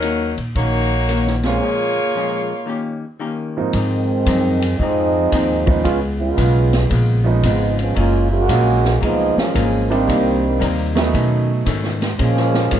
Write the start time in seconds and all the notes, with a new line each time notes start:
Already playing: D#2 F#3 C#4 D#4 A#4
0.02 D#3 A#3 C#4 F#4, hi-hat pedal, ride
0.37 A#2, ride
0.55 A#1 D#3 A#3 C#4 D#4 F#4 C#5, kick, ride
1.09 D#3 A#3 C#4 F#4, hi-hat pedal, ride
1.27 snare
1.43 A#2 G#3 A#3 C4 C#4 F4 G#4 C#5, snare, ride
1.61 A#2 F3 G#3 C#4
2.15 A#2 F3 G#3 C#4
2.66 D#3 A#3 C#4 G4
3.20 D#3 A#3 C#4 G4
3.57 G#2 F3 A#3 C4 D#4
3.73 G#2 D#3 F3 G#3 C4 D#4, kick, ride
4.26 F#2 G#2 F3 C4 D#4, kick, hi-hat pedal, ride
4.62 ride
4.78 F2 G#2 F3 G#3 C4 D#4, kick
5.32 D#2 G#2 F3 C4 D#4, kick, hi-hat pedal, ride
5.66 F3 G#3 B3 C#4 D#4, kick, ride
5.84 C#2 C#3 G#3 B3 C#4 F4, kick, ride
6.20 G#3 B3 C#4 F4
6.37 B1 C#3 G#3 B3 F4, kick, hi-hat pedal, ride
6.73 snare, ride
6.89 A#1 C#3 G#3 B3 F4, kick, ride
7.24 F3 G#3 B3 C#4 D#4
7.43 G#1 C#3 F3 G#3 B3 D#4 F4, kick, hi-hat pedal, ride
7.79 F3 G#3 B3 C#4, ride
7.95 F#1 F#3 G#3 A#3 C#4 F4 G#4, kick, ride
8.32 C#3 G#3 A#3 F#4
8.49 A#1 F#3 A#3 F4 G#4, kick, hi-hat pedal, ride
8.85 snare
9.01 C#2 F3 F#3 G#3 A#3 B3 D#4 F4 G#4, kick, ride
9.36 F3 G#3 A#3 C#4, muted upright bass stroke, snare
9.54 G#1 F#3 A#3 F4 G#4, kick, hi-hat pedal, ride
9.90 D#3 G3 A#3 C4 D4 D#4, ride
10.07 C2 C3 G3 A#3 D#4, kick, ride
10.59 D#2 C3 G3 A#3 D#4, kick, hi-hat pedal, ride
10.95 F#3 A3 B3 C#4 D#4, snare, ride
11.12 B2 D#3 A3 C#4, kick, ride
11.65 G#2 B2 D#3 A3 C#4, kick, hi-hat pedal, ride
11.84 snare
12.02 snare, ride
12.18 A#2 F3 G#3 A#3 C#4, kick, ride
12.37 snare
12.54 snare
12.71 G#2 A#2 F3 G#3 A#3 C#4 F4, kick, hi-hat pedal, ride